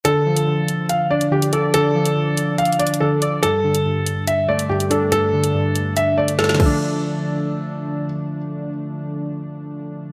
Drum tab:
CC |------------------------------------------------------------------------------------------------|------------------------------------------------------------------------------------------------|------------------------------------------------------------------------------------------------|------------------------------------------------------------------------------------x-----------|
HH |x-----------------x-----------------x-----------x-----------------x-----------x-----x-----------|x-----------------x-----------------x-----------x---x---x---x---x---x---------------x-----------|x-----------------x-----------------x-----------x-----------------x-----------x-----x-----------|x-----------------x-----------------x-----------x-----------------x-----------------------------|
SD |------------------------------------------------------------------------------------------------|------------------------------------------------------------------------------------------------|------------------------------------------------------------------------------------------------|------------------------------------------------------------------------o--o--o--o--------------|
BD |------------------------------------------------------------------------------------------------|------------------------------------------------------------------------------------------------|------------------------------------------------------------------------------------------------|------------------------------------------------------------------------------------o-----------|

CC |------------------------------------------------------------------------------------------------|------------------------------------------------------------------------------------------------|
HH |------------------------------------------------------------------------------------------------|------------------------------------------------------------------------------------------------|
SD |------------------------------------------------------------------------------------------------|------------------------------------------------------------------------------------------------|
BD |------------------------------------------------------------------------------------------------|------------------------------------------------------------------------------------------------|